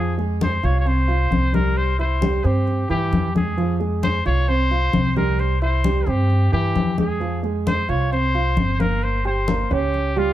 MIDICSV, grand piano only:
0, 0, Header, 1, 2, 480
1, 0, Start_track
1, 0, Key_signature, -4, "minor"
1, 0, Tempo, 453858
1, 1863, Time_signature, 4, 2, 24, 8
1, 10925, End_track
2, 0, Start_track
2, 0, Title_t, "Grand piano"
2, 0, Program_c, 0, 0
2, 0, Note_on_c, 0, 53, 69
2, 0, Note_on_c, 0, 65, 65
2, 143, Note_off_c, 0, 53, 0
2, 146, Note_off_c, 0, 65, 0
2, 186, Note_on_c, 0, 56, 68
2, 189, Note_on_c, 0, 68, 70
2, 579, Note_off_c, 0, 56, 0
2, 581, Note_off_c, 0, 68, 0
2, 668, Note_on_c, 0, 65, 70
2, 671, Note_on_c, 0, 77, 74
2, 863, Note_off_c, 0, 65, 0
2, 865, Note_off_c, 0, 77, 0
2, 902, Note_on_c, 0, 60, 63
2, 905, Note_on_c, 0, 72, 67
2, 1100, Note_off_c, 0, 60, 0
2, 1101, Note_off_c, 0, 72, 0
2, 1141, Note_on_c, 0, 65, 68
2, 1141, Note_on_c, 0, 77, 65
2, 1339, Note_off_c, 0, 65, 0
2, 1339, Note_off_c, 0, 77, 0
2, 1380, Note_on_c, 0, 60, 66
2, 1384, Note_on_c, 0, 72, 61
2, 1578, Note_off_c, 0, 60, 0
2, 1581, Note_off_c, 0, 72, 0
2, 1619, Note_on_c, 0, 55, 67
2, 1622, Note_on_c, 0, 67, 62
2, 2014, Note_off_c, 0, 55, 0
2, 2016, Note_off_c, 0, 67, 0
2, 2103, Note_on_c, 0, 64, 72
2, 2104, Note_on_c, 0, 76, 68
2, 2299, Note_off_c, 0, 64, 0
2, 2300, Note_off_c, 0, 76, 0
2, 2340, Note_on_c, 0, 55, 63
2, 2345, Note_on_c, 0, 67, 69
2, 2537, Note_off_c, 0, 55, 0
2, 2541, Note_off_c, 0, 67, 0
2, 2581, Note_on_c, 0, 72, 74
2, 2582, Note_on_c, 0, 60, 72
2, 2975, Note_off_c, 0, 60, 0
2, 2975, Note_off_c, 0, 72, 0
2, 3062, Note_on_c, 0, 52, 74
2, 3065, Note_on_c, 0, 64, 78
2, 3455, Note_off_c, 0, 52, 0
2, 3456, Note_off_c, 0, 64, 0
2, 3543, Note_on_c, 0, 56, 60
2, 3548, Note_on_c, 0, 68, 69
2, 3739, Note_off_c, 0, 56, 0
2, 3742, Note_off_c, 0, 68, 0
2, 3781, Note_on_c, 0, 53, 71
2, 3783, Note_on_c, 0, 65, 68
2, 3977, Note_off_c, 0, 53, 0
2, 3979, Note_off_c, 0, 65, 0
2, 4015, Note_on_c, 0, 56, 69
2, 4020, Note_on_c, 0, 68, 68
2, 4411, Note_off_c, 0, 56, 0
2, 4413, Note_off_c, 0, 68, 0
2, 4498, Note_on_c, 0, 65, 71
2, 4501, Note_on_c, 0, 77, 74
2, 4695, Note_off_c, 0, 65, 0
2, 4697, Note_off_c, 0, 77, 0
2, 4736, Note_on_c, 0, 60, 65
2, 4740, Note_on_c, 0, 72, 65
2, 4934, Note_off_c, 0, 60, 0
2, 4936, Note_off_c, 0, 72, 0
2, 4979, Note_on_c, 0, 65, 64
2, 4984, Note_on_c, 0, 77, 67
2, 5176, Note_off_c, 0, 65, 0
2, 5179, Note_off_c, 0, 77, 0
2, 5224, Note_on_c, 0, 60, 62
2, 5224, Note_on_c, 0, 72, 62
2, 5419, Note_off_c, 0, 60, 0
2, 5419, Note_off_c, 0, 72, 0
2, 5460, Note_on_c, 0, 55, 65
2, 5462, Note_on_c, 0, 67, 67
2, 5853, Note_off_c, 0, 55, 0
2, 5855, Note_off_c, 0, 67, 0
2, 5940, Note_on_c, 0, 64, 66
2, 5942, Note_on_c, 0, 76, 67
2, 6136, Note_off_c, 0, 64, 0
2, 6138, Note_off_c, 0, 76, 0
2, 6181, Note_on_c, 0, 55, 69
2, 6184, Note_on_c, 0, 67, 62
2, 6377, Note_off_c, 0, 55, 0
2, 6379, Note_off_c, 0, 67, 0
2, 6420, Note_on_c, 0, 60, 70
2, 6422, Note_on_c, 0, 72, 73
2, 6814, Note_off_c, 0, 60, 0
2, 6815, Note_off_c, 0, 72, 0
2, 6898, Note_on_c, 0, 52, 79
2, 6902, Note_on_c, 0, 64, 72
2, 7293, Note_off_c, 0, 52, 0
2, 7295, Note_off_c, 0, 64, 0
2, 7377, Note_on_c, 0, 56, 59
2, 7380, Note_on_c, 0, 68, 65
2, 7575, Note_off_c, 0, 56, 0
2, 7577, Note_off_c, 0, 68, 0
2, 7617, Note_on_c, 0, 53, 66
2, 7621, Note_on_c, 0, 65, 63
2, 7815, Note_off_c, 0, 53, 0
2, 7817, Note_off_c, 0, 65, 0
2, 7857, Note_on_c, 0, 56, 70
2, 7859, Note_on_c, 0, 68, 64
2, 8252, Note_off_c, 0, 56, 0
2, 8254, Note_off_c, 0, 68, 0
2, 8340, Note_on_c, 0, 65, 75
2, 8342, Note_on_c, 0, 77, 78
2, 8538, Note_off_c, 0, 65, 0
2, 8539, Note_off_c, 0, 77, 0
2, 8581, Note_on_c, 0, 60, 61
2, 8584, Note_on_c, 0, 72, 61
2, 8778, Note_off_c, 0, 60, 0
2, 8780, Note_off_c, 0, 72, 0
2, 8824, Note_on_c, 0, 65, 68
2, 8829, Note_on_c, 0, 77, 73
2, 9020, Note_off_c, 0, 65, 0
2, 9023, Note_off_c, 0, 77, 0
2, 9060, Note_on_c, 0, 60, 55
2, 9065, Note_on_c, 0, 72, 61
2, 9258, Note_off_c, 0, 60, 0
2, 9261, Note_off_c, 0, 72, 0
2, 9301, Note_on_c, 0, 58, 64
2, 9301, Note_on_c, 0, 70, 67
2, 9696, Note_off_c, 0, 58, 0
2, 9696, Note_off_c, 0, 70, 0
2, 9782, Note_on_c, 0, 67, 69
2, 9785, Note_on_c, 0, 79, 69
2, 9980, Note_off_c, 0, 67, 0
2, 9982, Note_off_c, 0, 79, 0
2, 10019, Note_on_c, 0, 58, 63
2, 10022, Note_on_c, 0, 70, 65
2, 10218, Note_off_c, 0, 58, 0
2, 10220, Note_off_c, 0, 70, 0
2, 10263, Note_on_c, 0, 61, 72
2, 10267, Note_on_c, 0, 73, 80
2, 10659, Note_off_c, 0, 61, 0
2, 10660, Note_off_c, 0, 73, 0
2, 10748, Note_on_c, 0, 55, 82
2, 10748, Note_on_c, 0, 67, 81
2, 10925, Note_off_c, 0, 55, 0
2, 10925, Note_off_c, 0, 67, 0
2, 10925, End_track
0, 0, End_of_file